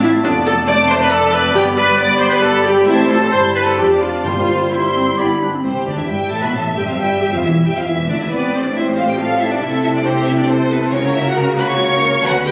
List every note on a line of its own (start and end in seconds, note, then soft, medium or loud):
0.00 0.22 A1 medium
0.00 0.22 A2 medium
0.00 0.23 C4 medium
0.00 0.10 E4 loud
0.00 0.11 E5 medium
0.00 0.21 F5 medium
0.00 1.50 A5 medium
0.23 1.52 F1 medium
0.23 1.52 F2 medium
0.23 0.39 A3 medium
0.23 1.56 A3 medium
0.23 0.67 B3 medium
0.23 0.32 D4 loud
0.23 0.39 F4 medium
0.23 2.84 D5 medium
0.23 0.46 D5 loud
0.23 1.51 A5 medium
0.47 0.55 A4 loud
0.47 0.55 A5 medium
0.68 1.12 A3 medium
0.68 0.76 D5 loud
0.68 0.90 D6 loud
0.89 0.94 C5 loud
0.89 1.00 C6 loud
1.01 1.12 B4 loud
1.01 1.11 B5 loud
1.11 1.55 C4 medium
1.11 1.33 A4 loud
1.11 1.33 A5 loud
1.33 1.55 B4 loud
1.33 1.41 B5 loud
1.54 2.85 G1 medium
1.54 2.85 G2 medium
1.54 2.87 G3 medium
1.54 1.85 B3 medium
1.54 1.70 B3 loud
1.54 1.70 G4 medium
1.54 1.63 G4 loud
1.54 1.64 G5 loud
1.54 2.85 B5 medium
1.54 2.84 B5 medium
1.77 1.99 B4 loud
1.77 1.99 B5 loud
1.98 2.59 B3 loud
1.98 2.21 D5 loud
1.98 2.21 D6 loud
2.21 2.32 C5 loud
2.21 2.32 C6 loud
2.31 2.44 B4 loud
2.31 2.43 B5 loud
2.43 2.66 A4 loud
2.43 2.51 A5 loud
2.65 2.88 G4 loud
2.65 2.87 G5 medium
2.87 3.29 A1 medium
2.87 3.29 A2 medium
2.87 3.29 G3 medium
2.87 3.29 C4 medium
2.87 3.04 C4 medium
2.87 3.10 E4 loud
2.87 3.04 G4 medium
2.87 3.29 C5 medium
2.87 3.09 E5 loud
2.87 3.29 A5 medium
3.09 3.32 A4 loud
3.09 3.17 A5 medium
3.31 3.78 G1 medium
3.31 3.78 G2 medium
3.31 3.79 G3 medium
3.31 3.77 E4 medium
3.31 3.77 C5 medium
3.31 3.40 C5 loud
3.31 3.80 C5 medium
3.31 3.77 A5 medium
3.31 3.54 C6 loud
3.54 3.66 B4 loud
3.54 3.66 B5 medium
3.66 3.78 A4 medium
3.66 3.78 A5 medium
3.77 4.25 F1 medium
3.77 4.25 F2 medium
3.77 4.26 F3 medium
3.77 4.28 D4 medium
3.77 3.94 D4 medium
3.77 3.95 F4 medium
3.77 4.01 G4 loud
3.77 4.24 D5 medium
3.77 4.27 D5 medium
3.77 3.85 G5 medium
3.77 4.24 A5 medium
3.77 3.84 A5 medium
4.00 4.23 F4 medium
4.00 4.23 F5 medium
4.00 4.07 B5 medium
4.24 5.17 G1 medium
4.24 5.16 G2 medium
4.24 4.91 G2 loud
4.24 4.71 G3 medium
4.24 4.68 G3 medium
4.24 4.41 C4 medium
4.24 4.71 F4 medium
4.24 4.41 G4 medium
4.24 4.71 C5 medium
4.24 4.71 F5 medium
4.24 4.71 C6 medium
4.71 5.17 G3 medium
4.71 4.94 G3 medium
4.71 5.18 E4 medium
4.71 5.19 C5 medium
4.71 5.17 C5 medium
4.71 5.17 E5 medium
4.71 5.20 C6 medium
4.71 5.17 C6 medium
4.96 5.06 C4 medium
5.18 5.43 G1 medium
5.18 5.43 G2 medium
5.18 5.41 G3 medium
5.18 5.35 B3 medium
5.18 5.44 E4 medium
5.18 5.34 G4 medium
5.18 5.41 D5 medium
5.18 5.26 D5 medium
5.18 5.44 B5 medium
5.18 5.42 B5 medium
5.42 5.56 D4 medium
5.54 5.65 C4 medium
5.64 5.72 C2 medium
5.64 5.86 C3 medium
5.64 5.72 C4 medium
5.64 6.06 G4 medium
5.64 5.85 C5 medium
5.87 5.91 D2 medium
5.87 5.92 D3 medium
5.87 5.98 D4 medium
5.87 5.98 D5 medium
5.98 6.03 E2 medium
5.98 6.10 E3 medium
5.98 6.09 E4 soft
5.98 6.09 E5 medium
6.09 6.17 G1 medium
6.09 6.17 G2 medium
6.09 6.32 G3 medium
6.09 6.31 G4 medium
6.09 8.27 E5 medium
6.09 6.31 G5 medium
6.30 6.43 A1 medium
6.30 6.42 A2 medium
6.30 6.44 A3 medium
6.30 6.42 A4 medium
6.30 6.42 A5 medium
6.42 6.54 B2 medium
6.42 6.54 B3 medium
6.42 6.54 B4 medium
6.42 6.54 B5 medium
6.53 6.77 A1 medium
6.53 6.76 A2 medium
6.53 6.77 A3 medium
6.53 6.63 A4 medium
6.53 6.62 A5 medium
6.75 6.81 G1 medium
6.75 6.80 G2 medium
6.75 6.88 G3 medium
6.75 6.87 G4 medium
6.75 6.87 G5 medium
6.87 6.98 F2 medium
6.87 6.99 F3 medium
6.87 6.98 F4 medium
6.87 6.92 F5 medium
6.98 7.20 G1 medium
6.98 7.19 G2 medium
6.98 7.20 G3 medium
6.98 7.06 G4 medium
6.98 7.20 G5 medium
7.20 7.32 G1 medium
7.20 7.31 G2 medium
7.20 7.32 G3 medium
7.20 7.25 G4 medium
7.20 7.32 G5 medium
7.31 7.42 F2 medium
7.31 7.43 F3 medium
7.31 7.42 F4 medium
7.31 7.37 F5 medium
7.42 7.65 E1 medium
7.42 7.64 E2 medium
7.42 7.53 E3 medium
7.42 7.65 E4 medium
7.42 7.51 E5 medium
7.65 7.76 G1 medium
7.65 7.76 G2 medium
7.65 7.75 G3 medium
7.65 7.76 G4 medium
7.65 7.76 G5 medium
7.75 7.80 F2 medium
7.75 7.87 F3 medium
7.75 7.80 F4 soft
7.75 7.88 F5 medium
7.86 8.08 E1 medium
7.86 8.08 E2 medium
7.86 8.08 E3 medium
7.86 7.95 E4 medium
7.86 8.09 E5 medium
8.09 8.20 D2 medium
8.09 8.20 D3 medium
8.09 8.14 D4 medium
8.09 8.20 D5 medium
8.20 8.24 E2 medium
8.20 8.32 E3 medium
8.20 8.25 E4 medium
8.20 8.32 E5 medium
8.30 9.59 A1 medium
8.30 9.59 A2 medium
8.30 9.59 G3 medium
8.30 8.53 B3 medium
8.30 9.59 C4 medium
8.30 8.53 B4 medium
8.30 8.74 D5 medium
8.53 8.64 C4 soft
8.53 8.64 C5 medium
8.64 8.75 D4 medium
8.64 8.76 D5 medium
8.75 8.83 E4 medium
8.75 9.18 C5 medium
8.75 8.84 E5 medium
8.96 9.01 F4 medium
8.96 9.07 F5 medium
9.07 9.18 G4 medium
9.07 9.13 G5 medium
9.17 9.40 F4 medium
9.17 9.61 A4 medium
9.17 9.40 F5 medium
9.40 9.51 E4 medium
9.40 9.52 E5 medium
9.50 9.62 D4 medium
9.50 9.63 D5 medium
9.62 10.91 C2 medium
9.62 10.91 C3 medium
9.62 10.92 A3 medium
9.62 9.82 E4 medium
9.62 10.92 E4 medium
9.62 10.05 A4 medium
9.62 9.83 E5 medium
9.83 9.88 E4 medium
9.83 9.88 E5 medium
9.93 10.05 D4 medium
9.93 10.06 D5 medium
10.04 10.27 C4 medium
10.04 10.49 G4 medium
10.04 10.28 C5 medium
10.26 10.38 E4 medium
10.26 10.38 E5 medium
10.38 10.42 D4 medium
10.38 10.49 D5 medium
10.48 10.57 C4 medium
10.48 10.94 A4 medium
10.48 10.71 C5 medium
10.71 10.83 B3 medium
10.71 10.83 B4 medium
10.83 10.94 C4 medium
10.83 10.94 C5 medium
10.94 12.22 C#2 medium
10.94 12.22 C#3 medium
10.94 12.22 A#3 medium
10.94 11.16 C#4 medium
10.94 12.52 F#4 medium
10.94 11.37 A#4 medium
10.94 11.16 C#5 medium
11.16 11.27 E4 medium
11.16 11.27 E5 medium
11.26 11.38 F#4 medium
11.26 11.38 F#5 medium
11.37 11.82 F#4 medium
11.37 11.59 A#4 medium
11.37 11.46 A#5 medium
11.59 11.70 B4 medium
11.59 11.64 B5 loud
11.70 12.24 C#5 medium
11.70 12.24 C#6 loud
11.82 12.24 A#4 medium
12.25 12.52 D2 medium
12.25 12.52 D3 medium
12.25 12.52 B3 medium
12.25 12.47 F#4 medium
12.25 12.52 B4 medium
12.25 12.47 F#5 loud
12.46 12.52 G4 medium
12.46 12.51 G5 medium